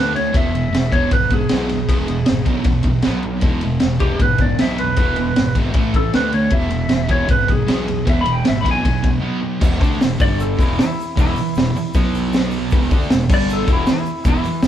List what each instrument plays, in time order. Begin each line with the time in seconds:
Already playing: fingered electric bass D2, distorted electric guitar D3 A3 D4, electric slide guitar B4
0.14 distorted electric guitar D3 A3, electric slide guitar C#5, snare, ride
0.33 fingered electric bass E1, distorted electric guitar E2 B2 E3, kick, ride
0.37 electric slide guitar E5
0.52 distorted electric guitar E2 B2, ride
0.73 fingered electric bass E1, distorted electric guitar E2 B2, snare, ride
0.91 distorted electric guitar E2 B2 E3, electric slide guitar C#5, kick, ride
1.11 fingered electric bass G#1, distorted electric guitar E2 B2, electric slide guitar B4, kick, ride
1.30 distorted electric guitar E2 B2, electric slide guitar G#4, kick, ride
1.49 fingered electric bass B1, distorted electric guitar E2 B2 E3, snare, ride
1.69 distorted electric guitar E2 B2, snare, ride
1.89 fingered electric bass E1, distorted electric guitar E2 B2 E3, kick, ride
2.07 distorted electric guitar E2 B2, ride
2.26 fingered electric bass G#1, distorted electric guitar E2 B2, snare, ride
2.45 fingered electric bass B1, distorted electric guitar E2 B2 E3, kick, ride
2.64 fingered electric bass B1, distorted electric guitar E2 B2, kick, ride
2.83 distorted electric guitar E2 B2, kick, ride
3.02 fingered electric bass B1, distorted electric guitar B2 F#3 B3, snare, ride
3.23 distorted electric guitar B2 F#3, ride
3.41 fingered electric bass E1, distorted electric guitar E2 B2, kick, ride
3.46 distorted electric guitar E3
3.61 distorted electric guitar E2 B2, ride
3.80 fingered electric bass E1, distorted electric guitar E2 B2, snare, ride
3.99 distorted electric guitar E2 B2 E3, electric slide guitar G4, kick, ride
4.20 fingered electric bass G#1, distorted electric guitar E2 B2, electric slide guitar B4, kick, ride
4.38 distorted electric guitar E2 B2, electric slide guitar D5, kick, ride
4.59 fingered electric bass B1, distorted electric guitar E2 B2 E3, electric slide guitar E5, snare, ride
4.78 distorted electric guitar E2 B2, electric slide guitar B4, ride
4.96 fingered electric bass E1, distorted electric guitar E2 B2 E3, kick, ride
5.16 distorted electric guitar E2 B2, ride
5.36 fingered electric bass G#1, distorted electric guitar E2 B2, snare, ride
5.55 fingered electric bass G#1, distorted electric guitar E2 B2 E3, kick, ride
5.73 fingered electric bass A1, distorted electric guitar A2 E3 A3, kick, ride
5.94 distorted electric guitar A2 E3, electric slide guitar A4, kick, ride
6.14 fingered electric bass D2, distorted electric guitar D3 A3 D4, electric slide guitar B4, snare, ride
6.33 distorted electric guitar D3 A3, electric slide guitar C#5, ride
6.50 fingered electric bass E1, distorted electric guitar E2 B2 E3, electric slide guitar E5, kick, ride
6.71 distorted electric guitar E2 B2, ride
6.89 fingered electric bass E1, distorted electric guitar E2 B2, snare, ride
7.07 distorted electric guitar E2 B2 E3, electric slide guitar C#5, kick, ride
7.28 fingered electric bass G#1, distorted electric guitar E2 B2, electric slide guitar B4, kick, ride
7.48 distorted electric guitar E2 B2, electric slide guitar G#4, kick, ride
7.67 fingered electric bass B1, distorted electric guitar E2 B2 E3, snare, ride
7.86 distorted electric guitar E2 B2, ride
8.05 fingered electric bass E1, distorted electric guitar E2 B2 E3, kick, ride
8.10 electric slide guitar E5
8.21 distorted electric guitar E2 B2, electric slide guitar B5
8.26 ride
8.33 electric slide guitar G5
8.44 distorted electric guitar E2 B2, electric slide guitar E5, snare, ride
8.49 fingered electric bass G#1
8.61 distorted electric guitar E2 B2 E3, electric slide guitar B5
8.65 fingered electric bass B1, kick, ride
8.71 electric slide guitar G#5
8.83 fingered electric bass B1, distorted electric guitar E2 B2, kick, ride
9.03 distorted electric guitar E2 B2, kick, ride
9.20 distorted electric guitar B2 F#3 B3
9.41 distorted electric guitar B2 F#3
9.60 fingered electric bass E1, distorted electric guitar E2 B2 E3, kick, crash, shaker
9.74 shaker
9.79 fingered electric bass D2, distorted electric guitar D3 A3 D4, kick, open hi-hat, shaker
9.92 shaker
10.01 fingered electric bass E1, distorted electric guitar E2 B2, snare, open hi-hat, shaker
10.19 fingered electric bass G1, distorted electric guitar G2 D3 G3, electric slide guitar D5, kick, open hi-hat, shaker
10.33 shaker
10.39 electric slide guitar A4, open hi-hat, shaker
10.59 fingered electric bass E1, distorted electric guitar E2 B2 E3, electric slide guitar E4, kick, open hi-hat, shaker
10.79 electric slide guitar E4, snare, open hi-hat, shaker
10.99 open hi-hat, shaker
11.16 fingered electric bass E1, distorted electric guitar E2 B2 E3, kick, open hi-hat, shaker
11.21 electric slide guitar E4
11.27 shaker
11.36 muted distorted electric guitar stroke, muted fingered electric bass stroke, open hi-hat, shaker
11.46 shaker
11.55 fingered electric bass E1, distorted electric guitar E2 B2, snare, open hi-hat, shaker
11.75 muted distorted electric guitar stroke, muted fingered electric bass stroke, open hi-hat, shaker
11.86 shaker
11.94 fingered electric bass B1, distorted electric guitar B2 F#3 B3, kick, open hi-hat, shaker
12.14 open hi-hat, shaker
12.32 snare, open hi-hat, shaker
12.51 open hi-hat, shaker
12.70 fingered electric bass E1, distorted electric guitar E2 B2, kick, open hi-hat, shaker
12.74 distorted electric guitar E3
12.91 fingered electric bass D2, distorted electric guitar D3 A3 D4, kick, open hi-hat, shaker
13.01 shaker
13.10 fingered electric bass E1, distorted electric guitar E2 B2, snare, open hi-hat, shaker
13.29 fingered electric bass G1, distorted electric guitar G2 D3 G3, kick, crash, shaker
13.34 electric slide guitar D5
13.42 shaker
13.50 electric slide guitar A4, shaker
13.66 fingered electric bass E1, distorted electric guitar E2 B2 E3, kick, open hi-hat, shaker
13.73 electric slide guitar E4
13.86 snare, open hi-hat, shaker
13.92 electric slide guitar E4
13.96 shaker
14.05 open hi-hat, shaker
14.24 fingered electric bass E1, distorted electric guitar E2 B2 E3, electric slide guitar E4, kick, open hi-hat, shaker
14.35 shaker
14.43 muted fingered electric bass stroke, muted distorted electric guitar stroke, open hi-hat, shaker
14.54 shaker
14.62 fingered electric bass E1, snare, open hi-hat, shaker